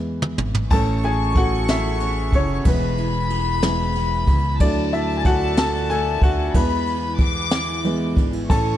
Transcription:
0.00 0.34 E2 medium
0.00 0.16 E3 soft
0.00 0.16 G#3 soft
0.00 0.16 B3 soft
0.22 mid tom medium
0.38 0.69 G#1 medium
0.38 mid tom medium
0.55 floor tom medium
0.70 2.29 A1 loud
0.70 1.65 E3 soft
0.70 1.65 A3 soft
0.70 1.99 C#4 medium
0.70 1.65 C#4 medium
0.70 1.35 A4 medium
0.70 1.02 A4 medium
0.70 1.04 A5 medium
0.70 2.62 C#6 medium
0.70 kick loud
0.70 crash medium
1.03 1.68 E4 medium
1.03 1.34 G#4 medium
1.03 1.37 G#5 loud
1.03 ride soft
1.35 1.44 F#4 medium
1.35 2.66 A4 medium
1.35 1.44 F#5 medium
1.35 kick medium
1.35 ride soft
1.68 2.33 E4 medium
1.68 2.30 E4 medium
1.68 2.36 E5 medium
1.68 snare loud
1.68 ride medium
2.00 2.65 C#4 medium
2.00 ride soft
2.33 2.63 F#1 medium
2.33 2.41 C#4 medium
2.33 2.72 E4 medium
2.33 2.42 C#5 medium
2.33 kick medium
2.33 ride soft
2.65 4.24 E1 medium
2.65 3.59 E3 soft
2.65 3.60 G#3 soft
2.65 3.95 B3 medium
2.65 3.62 B3 medium
2.65 3.29 G#4 medium
2.65 3.93 B4 medium
2.65 4.57 B5 medium
2.65 kick loud
2.65 ride medium
2.98 3.62 E4 medium
2.98 ride soft
3.30 4.60 G#4 medium
3.30 ride soft
3.62 3.92 E3 soft
3.62 3.92 G#3 soft
3.62 3.92 B3 medium
3.62 4.27 E4 medium
3.62 snare loud
3.62 ride medium
3.95 4.67 B3 medium
3.95 ride soft
4.27 4.58 C#2 medium
4.27 4.67 E4 medium
4.27 kick medium
4.27 ride soft
4.60 6.18 D2 loud
4.60 5.04 D3 medium
4.60 6.54 F#3 medium
4.60 5.04 F#3 soft
4.60 5.04 A3 medium
4.60 4.91 D4 medium
4.60 5.24 A4 medium
4.60 4.94 D5 medium
4.60 6.55 A5 medium
4.60 kick loud
4.60 ride medium
4.92 5.57 D4 medium
4.92 5.17 E4 medium
4.92 5.16 E5 loud
4.92 ride soft
5.17 5.24 G#5 medium
5.25 5.56 F#4 medium
5.25 6.55 A4 medium
5.25 5.59 F#5 medium
5.25 kick loud
5.25 ride soft
5.57 6.21 D4 medium
5.57 5.88 A4 medium
5.57 5.91 A5 loud
5.57 snare loud
5.57 ride medium
5.90 6.61 A3 medium
5.90 6.20 A4 medium
5.90 6.23 G#5 loud
5.90 ride soft
6.22 6.52 D2 medium
6.22 6.61 D4 medium
6.22 6.53 F#4 medium
6.22 6.52 F#5 medium
6.22 kick medium
6.22 ride soft
6.54 8.13 E2 loud
6.54 7.47 E3 soft
6.54 8.48 E3 medium
6.54 7.48 G#3 soft
6.54 7.48 B3 medium
6.54 7.19 G#4 medium
6.54 8.13 B4 medium
6.54 7.15 B5 loud
6.54 kick loud
6.54 ride medium
6.87 7.51 E4 medium
6.87 ride soft
7.18 8.50 G#4 medium
7.18 8.13 D6 loud
7.18 kick medium
7.18 ride soft
7.51 8.16 E4 medium
7.51 snare loud
7.51 ride medium
7.84 8.13 E3 soft
7.84 8.13 G#3 soft
7.84 8.56 B3 medium
7.84 8.14 B3 medium
7.84 ride soft
8.17 8.48 G#1 medium
8.17 8.33 D4 medium
8.17 kick medium
8.17 ride soft
8.33 8.56 E4 soft
8.49 8.77 A1 loud
8.49 8.77 E3 soft
8.49 8.77 E3 medium
8.49 8.77 A3 soft
8.49 8.77 C#4 medium
8.49 8.77 A4 medium
8.49 8.77 A5 medium
8.49 8.77 C#6 loud
8.49 kick loud
8.49 ride medium

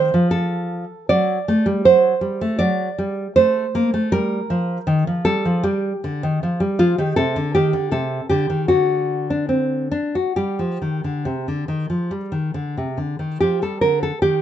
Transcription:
0.00 0.11 D#3 medium
0.00 0.29 C5 medium
0.14 0.83 F3 medium
0.31 1.07 A4 medium
1.09 1.37 F#3 medium
1.09 1.82 D5 loud
1.48 1.66 A3 medium
1.66 1.84 G3 medium
1.85 2.12 F#3 medium
1.85 2.58 C5 medium
2.21 2.40 G3 medium
2.41 2.60 A3 medium
2.59 2.88 F#3 medium
2.59 3.33 D5 loud
2.98 3.26 G3 medium
3.36 3.65 A3 medium
3.36 4.09 C5 loud
3.75 3.93 A#3 medium
3.94 4.12 A3 medium
4.12 4.40 G3 medium
4.12 5.21 A#4 loud
4.50 4.77 F3 medium
4.87 5.05 D#3 medium
5.07 5.25 F3 medium
5.25 5.44 G3 medium
5.25 5.62 A4 loud
5.45 5.64 F3 medium
5.63 5.92 G3 medium
5.63 6.38 G4 medium
6.04 6.22 D3 medium
6.23 6.41 D#3 medium
6.43 6.60 F3 medium
6.60 6.78 G3 medium
6.79 6.97 F3 medium
6.79 6.98 F4 loud
6.98 7.16 D#3 medium
6.98 7.18 G4 medium
7.16 7.35 C3 medium
7.16 7.53 A4 medium
7.36 7.54 D3 medium
7.55 7.74 D#3 medium
7.55 7.92 G4 medium
7.73 7.92 D3 medium
7.91 8.20 C3 medium
7.91 8.29 A4 medium
8.29 8.49 D3 medium
8.29 8.68 G4 medium
8.50 8.69 D#3 medium
8.68 9.90 D3 medium
8.68 9.27 F#4 medium
9.30 9.48 D4 medium
9.49 9.91 C4 medium
9.92 10.15 D4 medium
10.15 10.36 F#4 medium
10.36 10.59 G3 medium
10.36 12.93 G4 medium
10.59 10.80 F3 medium
10.82 11.03 D#3 medium
11.04 11.25 D3 medium
11.25 11.46 C3 medium
11.48 11.68 D3 soft
11.68 11.89 D#3 medium
11.90 12.11 F3 soft
12.11 12.32 G3 medium
12.32 12.53 D#3 medium
12.54 12.75 D3 medium
12.77 12.97 C3 medium
12.98 13.18 D3 soft
13.19 13.40 D#3 medium
13.40 13.61 F3 medium
13.40 13.62 G4 medium
13.62 13.81 G3 medium
13.62 13.81 A4 medium
13.81 14.11 D3 medium
13.81 14.02 A#4 medium
14.03 14.22 A4 medium
14.22 14.42 D#3 medium
14.22 14.42 G4 medium

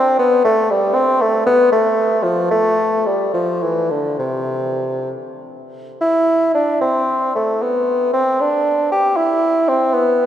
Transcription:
0.00 0.18 C4 medium
0.19 0.43 B3 medium
0.45 0.72 A3 medium
0.71 0.96 G3 medium
0.95 1.23 C4 medium
1.22 1.46 A3 medium
1.46 1.71 B3 medium
1.72 2.25 A3 medium
2.23 2.50 F3 medium
2.51 3.08 A3 medium
3.06 3.33 G3 medium
3.34 3.64 F3 medium
3.63 3.92 E3 medium
3.90 4.19 D3 medium
4.19 5.09 C3 medium
6.01 6.50 E4 medium
6.54 6.80 D4 medium
6.81 7.33 C4 medium
7.35 7.64 A3 medium
7.62 8.13 B3 medium
8.13 8.42 C4 medium
8.41 8.91 D4 medium
8.92 9.18 G4 medium
9.17 9.70 E4 medium
9.69 9.95 C4 medium
9.94 10.26 B3 medium

